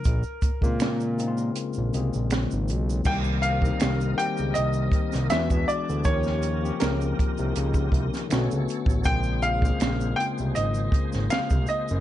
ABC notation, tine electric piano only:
X:1
M:4/4
L:1/16
Q:"Swing 16ths" 1/4=80
K:Bbdor
V:1 name="Tine electric piano"
z3 [D,A,B,CF]3 [D,A,B,CEF]3 z [D,A,B,CA]4- [D,A,B,CA] z | [E,G,B,CG]3 [E,G,B,CE]3 [E,G,B,CG]6 [=E,^G,=B,=D=E^F]3 z | [F,B,DEG]3 [F,B,CDG]6- [F,B,CDG] z2 [=D,=A,=B,^C^F]3 z | [D,A,B,CF]3 [D,A,B,CA]3 [D,A,B,CF]6- [D,A,B,CF] z3 |]